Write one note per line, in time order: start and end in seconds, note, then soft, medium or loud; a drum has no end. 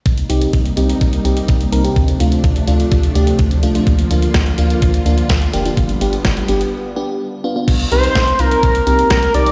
0.05 0.22 C2 loud
0.05 3.83 C3 medium
0.05 1.94 G3 medium
0.05 1.94 A#3 medium
0.05 1.94 D#4 medium
0.05 kick loud
0.05 closed hi-hat medium
0.18 closed hi-hat medium
0.29 0.46 C2 loud
0.29 0.50 C4 medium
0.29 0.50 D#4 medium
0.29 0.50 G4 medium
0.29 closed hi-hat medium
0.41 closed hi-hat soft
0.53 0.70 C2 medium
0.53 kick loud
0.53 closed hi-hat medium
0.66 closed hi-hat soft
0.77 0.94 C2 loud
0.77 0.97 C4 medium
0.77 0.97 D#4 medium
0.77 0.97 G4 medium
0.77 closed hi-hat medium
0.89 closed hi-hat medium
1.01 1.18 C2 loud
1.01 kick loud
1.01 closed hi-hat medium
1.13 closed hi-hat medium
1.25 1.41 C2 loud
1.25 1.45 C4 medium
1.25 1.45 D#4 medium
1.25 1.45 G4 medium
1.25 closed hi-hat medium
1.37 closed hi-hat medium
1.48 1.65 C2 loud
1.48 kick loud
1.48 closed hi-hat medium
1.61 closed hi-hat soft
1.72 1.89 C2 medium
1.72 1.83 C4 medium
1.72 1.83 D#4 medium
1.72 1.83 A#4 medium
1.72 closed hi-hat medium
1.84 1.96 C4 medium
1.84 1.96 D#4 medium
1.84 1.96 G4 medium
1.84 closed hi-hat medium
1.96 2.13 D2 loud
1.96 5.73 F3 medium
1.96 3.85 A3 medium
1.96 3.85 D4 medium
1.96 kick loud
1.96 closed hi-hat medium
2.08 closed hi-hat medium
2.20 2.37 D2 loud
2.20 2.40 A3 medium
2.20 2.40 D4 medium
2.20 2.40 F4 medium
2.20 closed hi-hat medium
2.32 closed hi-hat soft
2.44 2.61 D2 medium
2.44 kick loud
2.44 closed hi-hat medium
2.56 closed hi-hat soft
2.67 2.84 D2 loud
2.67 2.88 A3 medium
2.67 2.88 D4 medium
2.67 2.88 F4 medium
2.67 closed hi-hat medium
2.80 closed hi-hat medium
2.92 3.08 D2 loud
2.92 kick loud
2.92 closed hi-hat medium
3.03 closed hi-hat medium
3.15 3.32 D2 loud
3.15 3.36 A3 medium
3.15 3.36 D4 medium
3.15 3.36 G4 medium
3.15 closed hi-hat medium
3.27 closed hi-hat soft
3.39 3.64 D2 loud
3.39 kick loud
3.39 closed hi-hat medium
3.51 closed hi-hat medium
3.63 3.80 C2 medium
3.63 3.73 A3 medium
3.63 3.73 D4 medium
3.63 3.73 F4 medium
3.63 closed hi-hat medium
3.75 3.87 A3 medium
3.75 3.87 D4 medium
3.75 3.87 F4 medium
3.75 closed hi-hat medium
3.87 4.03 D2 loud
3.87 7.64 D3 medium
3.87 5.75 A#3 medium
3.87 7.64 F4 medium
3.87 kick loud
3.87 closed hi-hat medium
3.99 closed hi-hat medium
4.11 4.27 D2 medium
4.11 4.31 A#3 medium
4.11 4.31 D4 medium
4.11 4.31 F4 medium
4.11 closed hi-hat medium
4.22 closed hi-hat soft
4.34 4.51 D2 medium
4.34 kick loud
4.34 snare loud
4.34 closed hi-hat medium
4.46 closed hi-hat soft
4.58 4.75 D2 loud
4.58 4.78 A#3 medium
4.58 4.79 D4 medium
4.58 4.79 F4 medium
4.58 closed hi-hat medium
4.70 closed hi-hat medium
4.82 4.99 D2 medium
4.82 kick loud
4.82 closed hi-hat medium
4.94 closed hi-hat medium
5.06 5.22 D2 medium
5.06 5.26 A#3 medium
5.06 5.26 D4 medium
5.06 5.26 F4 medium
5.06 closed hi-hat medium
5.18 closed hi-hat soft
5.29 5.46 D2 loud
5.29 kick loud
5.29 snare loud
5.29 closed hi-hat medium
5.42 closed hi-hat soft
5.53 5.70 F1 medium
5.53 5.64 A#3 medium
5.53 5.64 D4 medium
5.53 5.64 G4 medium
5.53 closed hi-hat medium
5.66 5.77 A#3 medium
5.66 5.77 D4 medium
5.66 5.77 F4 medium
5.66 closed hi-hat medium
5.77 5.94 G1 loud
5.77 7.66 G3 medium
5.77 7.66 B3 medium
5.77 kick loud
5.77 closed hi-hat medium
5.89 closed hi-hat medium
6.01 6.18 G1 loud
6.01 6.21 B3 medium
6.01 6.21 D4 medium
6.01 6.21 G4 medium
6.01 closed hi-hat medium
6.13 closed hi-hat soft
6.25 6.42 G1 loud
6.25 kick loud
6.25 snare loud
6.25 closed hi-hat medium
6.37 closed hi-hat soft
6.48 6.65 G1 loud
6.48 6.69 B3 medium
6.48 6.69 D4 medium
6.48 6.69 G4 medium
6.48 closed hi-hat medium
6.61 closed hi-hat medium
6.96 7.17 B3 medium
6.96 7.17 D4 medium
6.96 7.17 G4 medium
7.44 7.54 B3 medium
7.44 7.54 D4 medium
7.44 7.54 F4 medium
7.56 7.68 B3 medium
7.56 7.68 D4 medium
7.56 7.68 F4 medium
7.68 7.84 C2 loud
7.68 kick loud
7.68 closed hi-hat medium
7.68 crash medium
7.80 closed hi-hat medium
7.92 8.08 C2 loud
7.92 8.12 C4 medium
7.92 8.12 D#4 medium
7.92 8.12 G4 medium
7.92 8.41 C5 loud
7.92 closed hi-hat medium
8.04 closed hi-hat medium
8.15 8.32 C2 medium
8.15 kick loud
8.15 snare loud
8.15 closed hi-hat medium
8.28 closed hi-hat soft
8.39 8.56 C2 loud
8.39 8.60 C4 medium
8.39 8.60 D#4 medium
8.39 8.60 F4 medium
8.39 9.10 A#4 medium
8.39 closed hi-hat medium
8.51 closed hi-hat medium
8.63 8.80 C2 loud
8.63 kick loud
8.63 closed hi-hat medium
8.75 closed hi-hat medium
8.87 9.03 C2 loud
8.87 9.07 C4 medium
8.87 9.07 D#4 medium
8.87 9.07 G4 medium
8.87 closed hi-hat medium
8.99 closed hi-hat medium
9.10 9.27 C2 loud
9.10 9.33 A#4 medium
9.10 kick loud
9.10 snare loud
9.10 closed hi-hat medium
9.23 closed hi-hat soft
9.34 9.51 C2 loud
9.34 9.45 C4 medium
9.34 9.45 D#4 medium
9.34 9.45 G4 medium
9.34 9.52 D5 loud
9.34 closed hi-hat medium
9.46 9.52 C4 medium
9.46 9.52 D#4 medium
9.46 9.52 G4 medium
9.46 closed hi-hat medium